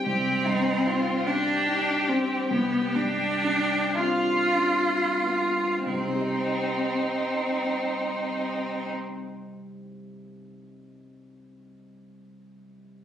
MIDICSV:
0, 0, Header, 1, 4, 480
1, 0, Start_track
1, 0, Key_signature, -3, "minor"
1, 0, Tempo, 815217
1, 33, Time_signature, 6, 3, 24, 8
1, 1474, Tempo, 930233
1, 1954, Tempo, 1125704
1, 2434, Tempo, 1307190
1, 2914, Tempo, 1185771
1, 4834, Tempo, 1247401
1, 5772, End_track
2, 0, Start_track
2, 0, Title_t, "Violin"
2, 0, Program_c, 0, 40
2, 33, Note_on_c, 0, 67, 50
2, 270, Note_on_c, 0, 63, 47
2, 279, Note_off_c, 0, 67, 0
2, 506, Note_on_c, 0, 65, 47
2, 515, Note_off_c, 0, 63, 0
2, 746, Note_on_c, 0, 67, 56
2, 755, Note_off_c, 0, 65, 0
2, 1466, Note_off_c, 0, 67, 0
2, 1470, Note_on_c, 0, 67, 52
2, 2167, Note_off_c, 0, 67, 0
2, 2176, Note_on_c, 0, 65, 39
2, 2543, Note_off_c, 0, 65, 0
2, 2914, Note_on_c, 0, 63, 31
2, 4138, Note_off_c, 0, 63, 0
2, 5772, End_track
3, 0, Start_track
3, 0, Title_t, "Cello"
3, 0, Program_c, 1, 42
3, 36, Note_on_c, 1, 60, 65
3, 746, Note_on_c, 1, 62, 57
3, 755, Note_off_c, 1, 60, 0
3, 1229, Note_on_c, 1, 60, 54
3, 1238, Note_off_c, 1, 62, 0
3, 1474, Note_off_c, 1, 60, 0
3, 1477, Note_on_c, 1, 59, 55
3, 1703, Note_on_c, 1, 62, 62
3, 1711, Note_off_c, 1, 59, 0
3, 2179, Note_on_c, 1, 65, 55
3, 2185, Note_off_c, 1, 62, 0
3, 2910, Note_off_c, 1, 65, 0
3, 2912, Note_on_c, 1, 60, 40
3, 4137, Note_off_c, 1, 60, 0
3, 5772, End_track
4, 0, Start_track
4, 0, Title_t, "Grand piano"
4, 0, Program_c, 2, 0
4, 0, Control_c, 2, 64, 127
4, 34, Note_on_c, 2, 36, 47
4, 46, Control_c, 2, 64, 0
4, 167, Control_c, 2, 64, 127
4, 269, Note_on_c, 2, 43, 32
4, 509, Note_on_c, 2, 63, 34
4, 647, Note_off_c, 2, 43, 0
4, 743, Note_on_c, 2, 62, 31
4, 885, Note_off_c, 2, 63, 0
4, 980, Note_off_c, 2, 62, 0
4, 980, Note_on_c, 2, 63, 36
4, 1224, Note_on_c, 2, 60, 33
4, 1372, Note_off_c, 2, 63, 0
4, 1450, Note_off_c, 2, 36, 0
4, 1474, Note_off_c, 2, 60, 0
4, 1474, Note_on_c, 2, 36, 43
4, 1485, Control_c, 2, 64, 0
4, 1583, Control_c, 2, 64, 127
4, 1705, Note_on_c, 2, 43, 32
4, 1958, Note_on_c, 2, 62, 33
4, 2087, Note_off_c, 2, 43, 0
4, 2185, Note_on_c, 2, 60, 28
4, 2332, Note_off_c, 2, 62, 0
4, 2433, Note_on_c, 2, 62, 29
4, 2435, Note_off_c, 2, 60, 0
4, 2675, Note_on_c, 2, 59, 27
4, 2822, Note_off_c, 2, 62, 0
4, 2899, Note_off_c, 2, 36, 0
4, 2912, Note_on_c, 2, 36, 24
4, 2913, Note_off_c, 2, 59, 0
4, 2926, Control_c, 2, 64, 0
4, 2941, Note_on_c, 2, 48, 24
4, 2970, Note_on_c, 2, 60, 24
4, 2998, Note_on_c, 2, 63, 23
4, 3027, Note_on_c, 2, 67, 25
4, 3052, Control_c, 2, 64, 127
4, 3053, Note_on_c, 2, 75, 24
4, 4137, Note_off_c, 2, 36, 0
4, 4165, Note_off_c, 2, 48, 0
4, 4194, Note_off_c, 2, 60, 0
4, 4223, Note_off_c, 2, 63, 0
4, 4251, Note_off_c, 2, 67, 0
4, 4278, Note_off_c, 2, 75, 0
4, 5772, End_track
0, 0, End_of_file